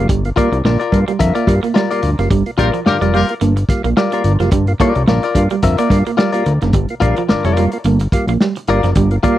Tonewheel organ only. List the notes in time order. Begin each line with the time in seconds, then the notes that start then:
0.10 G2 D3
0.25 A#3 F4
0.37 G3 A#3 F4
0.65 G2 D3
0.92 G3 A#3 F4
1.08 A#3 F4
1.20 G2 D3
1.48 G3 A#3 F4
1.64 A#3 F4
1.92 G3 A#3 F4
2.04 G2 D3
2.19 G3 A#3 F4
2.31 G2 D3
2.46 A#3 F4
2.58 G3 A#3 F4
2.86 G2 D3
3.14 G3 A#3 F4
3.30 A#3 F4
3.42 G2 D3
3.69 G3 A#3 F4
3.85 A#3 F4
4.13 G3 A#3 F4
4.25 G2 D3
4.40 G3 A#3 F4
4.53 G2 D3
4.68 A#3 F4
4.80 G3 A#3 F4
5.08 G2 D3
5.36 G3 A#3 F4
5.51 A#3 F4
5.64 G2 D3
5.91 G3 A#3 F4
6.07 A#3 F4
6.33 G3 A#3 F4
6.62 G2 D3
6.75 G2 D3
6.90 A#3 F4
7.02 G3 A#3 F4
7.30 G2 D3
7.57 G3 A#3 F4
7.73 A#3 F4
7.85 G2 D3
8.13 G3 A#3 F4
8.28 A#3 F4
8.68 G3 A#3 F4
8.96 G2 D3
9.11 A#3 F4
9.24 G3 A#3 F4